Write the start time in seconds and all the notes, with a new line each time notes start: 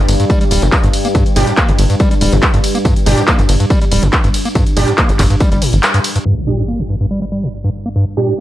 Already playing: G2
0.08 G1 G2, open hi-hat, ride, tambourine
0.20 G2, closed hi-hat, tambourine
0.30 G3, kick, closed hi-hat, tambourine
0.41 G3, closed hi-hat, tambourine
0.51 D1 G3, open hi-hat, ride, tambourine
0.62 G1 G2, closed hi-hat, tambourine
0.72 kick, clap, closed hi-hat, tambourine
0.84 G1 G2, closed hi-hat, tambourine
0.93 open hi-hat, ride, tambourine
1.05 A#3, closed hi-hat, tambourine
1.15 G2, kick, closed hi-hat, tambourine
1.26 closed hi-hat, tambourine
1.36 G1 A#2 G3 D4 G4, open hi-hat, ride, tambourine
1.47 G2, closed hi-hat, tambourine
1.57 A#3, kick, clap, closed hi-hat, tambourine
1.69 G1 F2, closed hi-hat, tambourine
1.79 G1 G2, open hi-hat, ride, tambourine
1.90 G2, closed hi-hat, tambourine
2.00 G3, kick, closed hi-hat, tambourine
2.11 G3, closed hi-hat, tambourine
2.21 D1 G3, open hi-hat, ride, tambourine
2.32 G1 G2, closed hi-hat, tambourine
2.43 kick, clap, closed hi-hat, tambourine
2.54 G1 G2, closed hi-hat, tambourine
2.64 open hi-hat, ride, tambourine
2.75 A#3, closed hi-hat, tambourine
2.85 G2, kick, closed hi-hat, tambourine
2.96 closed hi-hat, tambourine
3.06 G1 A#2 G3 D4 G4, open hi-hat, ride, tambourine
3.18 G2, closed hi-hat, tambourine
3.28 A#3, kick, clap, closed hi-hat, tambourine
3.39 G1 F2, closed hi-hat, tambourine
3.49 G1 G2, open hi-hat, ride, tambourine
3.60 G2, closed hi-hat, tambourine
3.70 G3, kick, closed hi-hat, tambourine
3.81 G3, closed hi-hat, tambourine
3.91 D1 G3, open hi-hat, ride, tambourine
4.03 G1 G2, closed hi-hat, tambourine
4.13 kick, clap, closed hi-hat, tambourine
4.24 G1 G2, closed hi-hat, tambourine
4.34 open hi-hat, ride, tambourine
4.45 A#3, closed hi-hat, tambourine
4.55 G2, kick, closed hi-hat, tambourine
4.67 closed hi-hat, tambourine
4.77 G1 A#2 G3 D4 G4, open hi-hat, ride, tambourine
4.88 G2, closed hi-hat, tambourine
4.98 A#3, kick, clap, closed hi-hat, tambourine
5.09 G1 F2, closed hi-hat, tambourine
5.19 G1 G2, kick, clap, open hi-hat, ride, tambourine
5.30 G2, closed hi-hat, tambourine
5.40 G3, kick, closed hi-hat, tambourine
5.52 G1 G3, closed hi-hat, tambourine
5.62 A2, open hi-hat, ride, tambourine
5.73 G1 G3, closed hi-hat, tambourine
5.83 clap, closed hi-hat, tambourine
5.94 G2, closed hi-hat, tambourine
6.04 open hi-hat, ride, tambourine
6.16 G2, closed hi-hat, tambourine
6.26 G2, impact
6.47 A#2 G3 D4 G4
6.58 G2
6.68 A#3
6.79 F2
6.89 G2
7.01 G2
7.11 G3
7.22 G3
7.32 G3
7.43 G2
7.64 G2
7.86 A#3
7.96 G2
8.17 A#2 G3 D4 G4
8.28 G2